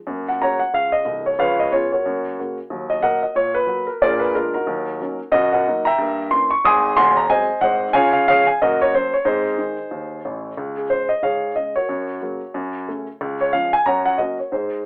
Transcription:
0.07 F#2 A#3
0.29 F#5
0.42 C#3 A#3 F#4 C#5 F#5 A#5
0.60 F#5
0.74 C#2 F5
0.92 D#5
1.05 C1 C2
1.26 C#5
1.39 C#2 F3 B4 C#5 F5
1.59 D#5
1.71 C#3 B3 F4 G#4 C#5
1.92 F#4 A#4 C#5
2.06 F#2 A#3
2.39 C#3 A#3 F#4
2.70 D#2 F#3
2.90 D#5
3.01 F#3 A#3 F#4 A#4 D#5 F#5
3.23 D#5
3.35 A#2 C#5
3.55 B4
3.67 F#3 A#3 F#4
3.87 A#4
4.02 A#2 D4 G#4 A#4 D5
4.19 B4
4.34 G#3 A#3 D4 F4 A#4
4.54 D#4 F#4 A#4
4.67 D#2 F#3
5.01 F#3 A#3 C#4
5.32 F#2 F#4 A#4 D#5
5.52 A#4 D#5 F#5
5.67 F#3 A#3 D#4
5.85 E5 G5 A#5
5.98 G2 A#3
6.30 E3 A#3 C#4 C6
6.50 C#6
6.64 G#1 G#2 G#5 C6 D#6
6.97 D#1 D#2 F#5 G#5 C6
7.17 A#5
7.29 F#3 G#3 C4 C5 D#5 G#5
7.61 G#1 G#2 C5 D#5 F#5
7.93 C#3 F4 C#5 F5 G#5
8.13 F5
8.27 F3 G#3 C#4 G#4 C#5 F5
8.47 G#5
8.62 F#2 A#3 F#4 A#4 D#5
8.82 C#5
8.95 F#3 A#3 C#4 C5
9.14 C#5
9.25 G#2 C4 D#4 G#4 C5
9.58 D#3 G#3
9.91 D#2
10.25 A1 A2
10.57 C#2
10.77 G#4
10.89 C#3 G#3 C5
11.09 D#5
11.22 G#2 G#4 C#5 F5
11.55 C#3 G#3 D#5
11.76 F#4 A#4 C#5
11.89 F#2
12.21 C#3 F#3 A#3
12.54 F#2
12.88 C#3 A3 C#4
13.21 C#2
13.41 C#5
13.53 F3 G#3 C#4 F5
13.73 G#5
13.86 F#2 C#5 F#5 A#5
14.06 F#5
14.18 F#3 A#3 C#4 F#4 A#4 D#5
14.39 C#5
14.52 G#2 D#4 G#4 C5

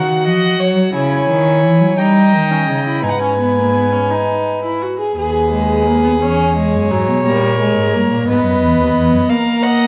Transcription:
Already playing: D#3 F#4 F#5
0.26 F3 D#5
0.60 F#3 C#5
0.94 C#3 E4 C#5 G#5
1.29 D#3
1.63 E3
1.80 F#3
1.97 G3 D#4 D#5 G5
2.33 D#3
2.51 C#4
2.68 C#3 D#4
2.86 E4
3.03 G#2 D#4 B4 G#5
3.11 F#5
3.19 C#4 G#5
3.39 B3
3.57 A#3
3.74 B3
3.93 C#4
4.10 D#4
4.64 E4
4.82 F#4
4.99 G#4
5.17 D#2 G#4 B4
5.52 G#3
5.87 A#3
6.04 B3
6.22 E2 C#4 C#5
6.56 G#3
6.74 F#2
6.91 G#2 F#3
7.08 B2
7.25 A#2 G3 A#4
7.60 G#3
7.77 G#2
7.94 G2 A#3
8.11 A#2
8.28 G#2 B3 B4 D#5
8.45 F#2
8.62 E2
8.79 D#2
8.96 E2
9.12 F#2
9.30 A#3 A#4 F5
9.63 D#5 F#5

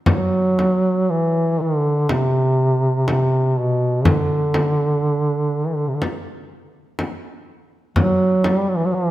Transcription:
0.06 F#3, frame drum
0.59 frame drum
1.10 E3
1.61 D3
2.09 C3, frame drum
3.08 C3, frame drum
3.59 B2
4.05 D3, frame drum
4.54 frame drum
5.67 E3
5.76 D3
5.88 C3
5.94 D3
6.02 frame drum
6.99 frame drum
7.96 F#3, frame drum
8.44 frame drum
8.58 G3
8.69 F#3
8.76 E3
8.86 F#3
8.95 E3

